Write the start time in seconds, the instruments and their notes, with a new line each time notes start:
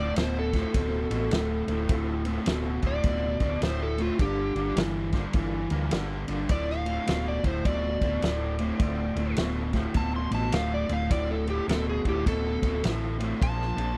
Already playing: fingered electric bass D1, overdriven electric guitar D2 A2, tonewheel organ C4 E4 F4 A4
0.00 electric slide guitar D5
0.16 fingered electric bass D1, overdriven electric guitar D2 B2, tonewheel organ C4 E4 F4 A4, electric slide guitar C5, snare, ride
0.39 electric slide guitar A4
0.53 overdriven electric guitar D2 A2, tonewheel organ C4 E4 F4 C5, kick, snare, ride
0.74 fingered electric bass D1, overdriven electric guitar D2 B2, tonewheel organ C4 E4 F4 C5, kick, ride
1.10 fingered electric bass A1, overdriven electric guitar D2 B2, tonewheel organ C4 E4 F4 A4, ride
1.31 fingered electric bass D1, overdriven electric guitar D2 A2, tonewheel organ C4 E4 F4 A4, snare, ride
1.67 fingered electric bass D1, overdriven electric guitar D2 A2, tonewheel organ C4 E4 F4 A4, ride
1.89 fingered electric bass D1, overdriven electric guitar D2 A2, tonewheel organ C4 E4 F4 A4, kick, ride
2.25 overdriven electric guitar D2 A2, tonewheel organ C4 E4 F4 A4, ride
2.46 fingered electric bass D1, overdriven electric guitar D2 B2, tonewheel organ C4 E4 F4 A4, snare, ride
2.82 fingered electric bass D1, overdriven electric guitar D2 A2, tonewheel organ C4 E4 F4 A4, kick, ride
2.87 electric slide guitar D5
3.03 fingered electric bass D1, overdriven electric guitar D2 B2, tonewheel organ C4 E4 F4 A4, kick, ride
3.40 fingered electric bass D1, overdriven electric guitar D2 B2, tonewheel organ C4 E4 F4 A4, kick, ride
3.61 fingered electric bass D1, overdriven electric guitar D2 A2, tonewheel organ C4 E4 F4 A4, electric slide guitar C5, snare, ride
3.82 electric slide guitar A4
3.98 overdriven electric guitar D2 A2, tonewheel organ C4 E4 F4 A4, electric slide guitar F4, ride
4.19 fingered electric bass G1, overdriven electric guitar G2 D3, tonewheel organ A#3 D4 F4 A4, electric slide guitar G4, kick, ride
4.55 fingered electric bass G1, overdriven electric guitar G2 D3, tonewheel organ A#3 D4 F4 A4, ride
4.76 fingered electric bass G1, overdriven electric guitar G2 E3, tonewheel organ A#3 D4 F4 A4, snare, ride
5.12 overdriven electric guitar G2 D3, tonewheel organ A#3 D4 F4 C5, kick, snare, ride
5.33 fingered electric bass G1, overdriven electric guitar G2 E3, tonewheel organ A#3 D4 F4 A4, kick, ride
5.70 fingered electric bass D2, overdriven electric guitar G2 E3, tonewheel organ A#3 D4 F4 A#4, ride
5.91 fingered electric bass G1, overdriven electric guitar G2 D3, tonewheel organ A#3 D4 F4 A4, snare, ride
6.28 fingered electric bass G1, overdriven electric guitar G2 D3, tonewheel organ A#3 D4 F4 A4, ride
6.49 fingered electric bass D1, overdriven electric guitar D2 A2, tonewheel organ C4 E4 F4 A4, electric slide guitar D5, kick, ride
6.70 electric slide guitar F5, snare
6.86 overdriven electric guitar D2 A2, tonewheel organ C4 E4 F4 A4, ride
7.07 fingered electric bass D1, overdriven electric guitar D2 B2, tonewheel organ C4 E4 F4 A4, snare, ride
7.28 electric slide guitar D5
7.43 fingered electric bass D1, overdriven electric guitar D2 A2, tonewheel organ C4 E4 F4 A4, electric slide guitar C5, kick, ride
7.64 fingered electric bass D1, overdriven electric guitar D2 B2, tonewheel organ C4 E4 F4 A4, electric slide guitar D5, kick, ride
8.00 fingered electric bass D1, overdriven electric guitar D2 B2, tonewheel organ C4 E4 F4 A4, kick, ride
8.22 fingered electric bass D1, overdriven electric guitar D2 A2, tonewheel organ C4 E4 F4 A4, snare, ride
8.58 overdriven electric guitar D2 A2, tonewheel organ C4 E4 F4 C5, ride
8.78 fingered electric bass D1, overdriven electric guitar D2 A2, tonewheel organ C4 E4 F4 A4, kick, ride
9.14 fingered electric bass D1, overdriven electric guitar D2 A2, tonewheel organ C4 E4 F4 A4, ride
9.36 fingered electric bass D1, overdriven electric guitar D2 B2, tonewheel organ C4 E4 F4 A4, snare, ride
9.72 overdriven electric guitar D2 A2, tonewheel organ C4 E4 F4 G4, kick, snare, ride
9.94 fingered electric bass D1, overdriven electric guitar D2 B2, tonewheel organ C4 E4 F4 A4, electric slide guitar A5, kick, ride
10.16 electric slide guitar C6
10.31 fingered electric bass A1, overdriven electric guitar D2 B2, tonewheel organ C4 E4 F4 A4, electric slide guitar A5, ride
10.51 fingered electric bass D1, overdriven electric guitar D2 A2, tonewheel organ C4 E4 F4 A4, electric slide guitar F5, snare, ride
10.74 electric slide guitar D5
10.87 fingered electric bass D1, overdriven electric guitar D2 A2, tonewheel organ C4 E4 F4 A4, ride
10.93 electric slide guitar F5
11.09 fingered electric bass D1, overdriven electric guitar D2 A2, tonewheel organ C4 E4 F4 A4, electric slide guitar D5, kick, ride
11.31 electric slide guitar A4
11.45 overdriven electric guitar D2 A2, tonewheel organ C4 E4 F4 A4, ride
11.50 electric slide guitar G4
11.67 fingered electric bass D1, overdriven electric guitar D2 B2, tonewheel organ C4 E4 F4 A4, electric slide guitar A4, snare, ride
11.89 electric slide guitar G#4
12.04 fingered electric bass D1, overdriven electric guitar D2 A2, tonewheel organ C4 E4 F4 A4, kick, ride
12.09 electric slide guitar G4
12.25 fingered electric bass D1, overdriven electric guitar D2 B2, tonewheel organ C4 E4 F4 A4, electric slide guitar A4, kick, ride
12.62 fingered electric bass D1, overdriven electric guitar D2 B2, tonewheel organ C4 E4 F4 A4, kick, ride
12.83 fingered electric bass A1, overdriven electric guitar D2 A2, tonewheel organ C4 E4 F4 A4, snare, ride
13.19 overdriven electric guitar D2 A2, tonewheel organ C4 E4 F4 A4, ride
13.40 fingered electric bass A#1, overdriven electric guitar A#2 F3, tonewheel organ C4 D4 F4 G#4, electric slide guitar A5, kick, ride
13.61 snare
13.76 fingered electric bass A#1, overdriven electric guitar A#2 F3, tonewheel organ C4 D4 F4 G#4, ride